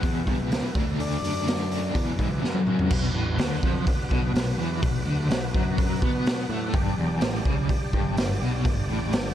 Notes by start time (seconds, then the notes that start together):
0.00 E2 B2 E3 B3 E4 G4 B4, kick, open hi-hat
0.27 E2 G2 B2 E3, kick, open hi-hat
0.38 C#2
0.51 E2 B2 E3, snare, open hi-hat
0.73 D2 D3 A3 D4 F#4 A4, kick, open hi-hat
0.98 D3 A3 D4 D5, open hi-hat
1.22 F#2 D3 A3 D4, open hi-hat
1.46 D3 A3 D4, snare, open hi-hat
1.70 D3 A3 D4, open hi-hat
1.93 E2 B2 E3 B3 E4 G#4 B4, kick, open hi-hat
2.18 E2 G#2 B2 E3, kick, open hi-hat
2.30 C#2
2.42 F#2 C#3 F#3 A#3 C#4 F#4 A#4, snare
2.55 high tom
2.67 F#2 C#3 F#3, mid tom
2.79 floor tom
2.90 B1 B2 B3 D4 F#4 B4, kick, crash
3.14 A1 A2
3.38 D2 D3, snare, open hi-hat
3.63 F2 F3, kick
3.87 muted fingered electric bass stroke, muted overdriven electric guitar stroke, kick, open hi-hat
4.11 B1 B2, kick
4.34 B1 B2, snare, open hi-hat
4.58 E2 E3
4.83 B1 B2, kick, open hi-hat
5.05 D2 D3
5.30 B1 B2, snare, open hi-hat
5.54 F#2 F#3, kick
5.78 kick, open hi-hat
6.02 B2 B3, kick
6.26 snare, open hi-hat
6.49 A2 A3
6.73 G1 G2 G3 D4 G4 D5, kick, open hi-hat
6.98 E1 E2
7.21 A1 A2, snare, open hi-hat
7.45 C#2 C#3, kick
7.69 muted overdriven electric guitar stroke, muted fingered electric bass stroke, kick, open hi-hat
7.93 G1 G2, kick
8.17 G1 G2, snare, open hi-hat
8.42 B1 B2
8.65 G1 G2, kick, open hi-hat
8.89 A1 A2
9.12 G1 G2, snare, open hi-hat